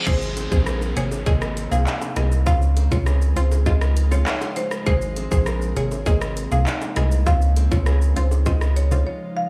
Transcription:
Already playing: nylon-string guitar C4 F4 G#4
0.06 sub bass G#1, synth stab C3 A#3 G#4, ambient pad C3 G#3 A#3, nylon-string guitar G#3, marimba C5, kick, crash, downlifter, shaker
0.22 shaker
0.37 nylon-string guitar C4, closed hi-hat, high bongo, shaker
0.51 sub bass A#1, synth stab C3 A#3 G#4, marimba C5, kick, shaker
0.66 nylon-string guitar A#4, cross-stick, high bongo, shaker
0.82 shaker
0.96 sub bass G#1, synth stab C3 A#3 G#4, marimba C#5, closed hi-hat, shaker
1.11 high bongo, shaker
1.26 sub bass G#1, synth stab C3 A#3 G#4, nylon-string guitar C4, marimba D#5, kick, shaker
1.42 cross-stick, high bongo, shaker
1.57 closed hi-hat, shaker
1.71 sub bass C2, synth stab C3 A#3 G#4, marimba F5, high bongo, shaker
1.87 nylon-string guitar D#4, clap, shaker
2.02 high bongo, shaker
2.16 sub bass C2, synth stab C3 A#3 G#4, marimba D#5, cross-stick, closed hi-hat, low bongo, shaker
2.32 shaker
2.46 sub bass C#2, synth stab C#3 C4 F4, nylon-string guitar C#3, ambient pad F3 D#4 F4, marimba F5, kick, shaker
2.62 shaker
2.77 nylon-string guitar C4, closed hi-hat, high bongo, shaker
2.91 sub bass C#2, synth stab C3 C#3 F4, marimba C#5, kick, shaker
3.06 nylon-string guitar G#4, cross-stick, high bongo, shaker
3.22 shaker
3.36 sub bass C#2, synth stab C#3 C4 F4, marimba C5, closed hi-hat, shaker
3.51 high bongo, shaker
3.66 synth stab C#3 C4 F4, nylon-string guitar G#3, marimba D#5, kick, shaker
3.81 cross-stick, high bongo, shaker
3.97 closed hi-hat, shaker
4.11 synth stab C#3 C4 F4, marimba C#5, high bongo, shaker
4.26 nylon-string guitar D#4, cross-stick, clap, shaker
4.41 nylon-string guitar F4, high bongo, shaker
4.56 marimba C5, closed hi-hat, low bongo, shaker
4.71 cross-stick, shaker
4.86 sub bass G#1, synth stab C3 A#3 G#4, ambient pad C3 A#3, nylon-string guitar G#3, marimba C5, kick, shaker
5.01 shaker
5.16 nylon-string guitar C4, closed hi-hat, high bongo, shaker
5.31 sub bass A#1, synth stab C3 A#3 G#4, marimba C5, kick, shaker
5.46 nylon-string guitar A#4, cross-stick, high bongo, shaker
5.62 shaker
5.76 sub bass G#1, synth stab C3 A#3 G#4, marimba C#5, closed hi-hat, shaker
5.91 high bongo, shaker
6.06 sub bass G#1, synth stab C3 A#3 G#4, nylon-string guitar C4, marimba D#5, kick, shaker
6.22 cross-stick, high bongo, shaker
6.37 closed hi-hat, shaker
6.51 sub bass C2, synth stab C3 A#3 G#4, marimba F5, high bongo, shaker
6.66 nylon-string guitar D#4, clap, shaker
6.82 high bongo, shaker
6.96 sub bass C2, synth stab C3 A#3 G#4, marimba D#5, cross-stick, closed hi-hat, low bongo, shaker
7.12 shaker
7.26 sub bass C#2, synth stab C#3 C4 F4, nylon-string guitar C#3, ambient pad F3 D#4 F4, marimba F5, kick, shaker
7.42 shaker
7.56 nylon-string guitar C4, closed hi-hat, high bongo, shaker
7.71 sub bass C#2, synth stab C3 C#3 F4, marimba C#5, kick, shaker
7.86 nylon-string guitar G#4, cross-stick, high bongo, shaker
8.02 shaker
8.16 sub bass C#2, synth stab C#3 C4 F4, marimba C5, closed hi-hat, low bongo, shaker
8.31 high bongo, shaker
8.46 synth stab C#3 C4 F4, nylon-string guitar G#3, marimba D#5, kick, shaker
8.61 cross-stick, high bongo, shaker
8.76 marimba C#5, closed hi-hat, shaker
8.91 synth stab C#3 C4 F4, high bongo, shaker
9.07 nylon-string guitar F4, marimba C#5
9.37 marimba F5

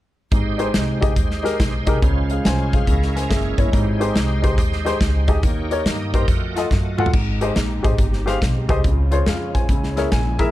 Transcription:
0.31 upright bass G#1, upright piano G#2, tonewheel organ G#3 D#4 G4 C5, kick, closed hi-hat
0.58 upright piano D#4 G4 G#4 C5, closed hi-hat
0.74 upright bass C2, snare, closed hi-hat
1.01 upright piano D#4 G4 G#4 D#5, kick, closed hi-hat
1.16 upright bass D#2, kick, closed hi-hat
1.31 snare
1.43 upright piano D#4 G4 G#4 A#4, snare, closed hi-hat
1.60 upright bass B1, kick, snare, closed hi-hat
1.86 upright bass C2, upright piano D#4 G4 G#4 A#4, kick, closed hi-hat
2.02 upright bass C#2, upright piano C#3, tonewheel organ G#3 C#4 F4 C5, kick, closed hi-hat
2.30 upright piano G#4 F5, closed hi-hat
2.45 upright bass C2, upright piano C5 G#5, snare, closed hi-hat
2.73 upright piano G#4 F5, kick, closed hi-hat
2.86 upright bass C#2, upright piano C#3, tonewheel organ G#3 C#4 E4 A#4, kick, closed hi-hat
3.02 snare
3.16 upright piano C5 G#5, snare, closed hi-hat
3.29 upright bass F#1, upright piano G#4 E5, kick, snare, closed hi-hat
3.58 upright bass G1, upright piano E4 C#5, kick, closed hi-hat
3.71 upright bass G#1, upright piano G#2, tonewheel organ G#3 D#4 G4 A#4, kick, closed hi-hat
3.77 tonewheel organ C5
4.00 upright piano D#4 G4 G#4 C5, closed hi-hat
4.15 upright bass C2, snare, closed hi-hat
4.42 upright piano D#4 G4 G#4 C5, kick, closed hi-hat
4.58 upright bass D#2, kick, closed hi-hat
4.73 snare
4.85 upright piano D#4 G4 G#4 C5, snare, closed hi-hat
5.01 upright bass C#2, kick, snare, closed hi-hat
5.28 upright bass D2, upright piano D#4 G4 G#4 D#5, kick, closed hi-hat
5.42 upright bass D#2, upright piano D#3, tonewheel organ A#3 D#4 G4 C#5, kick, closed hi-hat
5.71 upright piano D#4 G4 A#4 C#5, closed hi-hat
5.86 upright bass G2, tonewheel organ G4 D#5, snare, closed hi-hat
6.13 upright piano D#4 G4 A#4 C5, tonewheel organ A#4 G5, kick, closed hi-hat
6.28 upright bass F2, tonewheel organ A3 F4 F#4 D#5, kick, closed hi-hat
6.56 upright piano F4 F#4 A4 D#5, snare, closed hi-hat
6.71 upright bass F#2, kick, snare
6.98 upright piano F4 F#4 A4 F#5, mid tom
7.06 floor tom
7.13 upright bass G#1, upright piano G#2, string section G#3 C4 D#4 G4, kick, crash
7.41 upright piano G4 G#4 C5 D#5, closed hi-hat
7.56 upright bass A#1, snare, closed hi-hat
7.83 upright bass G#1, upright piano G4 G#4 C5 D#5, kick, closed hi-hat
7.98 upright bass G1, kick, closed hi-hat
8.13 snare
8.26 upright piano G4 G#4 C5 F5, snare, closed hi-hat
8.42 upright bass B1, kick, snare, closed hi-hat
8.69 upright bass C2, upright piano G4 G#4 C5 D#5, kick, closed hi-hat
8.84 upright bass C#2, upright piano C#3, string section C#4 F4, kick, closed hi-hat
9.11 upright piano F4 G#4 C5 C#5, closed hi-hat
9.26 upright bass F2, upright piano G#4 F5, snare, closed hi-hat
9.54 upright bass D#2, upright piano C5 G#5, kick, closed hi-hat
9.69 upright bass C#2, upright piano C#3, string section A#3 E4, kick, closed hi-hat
9.83 snare
9.96 upright piano E4 G#4 A#4 C#5 E5, snare, closed hi-hat
10.12 upright bass A#1, upright piano G#5, kick, snare, closed hi-hat
10.39 upright piano E4 G#4 A#4 E5 A#5, kick, closed hi-hat

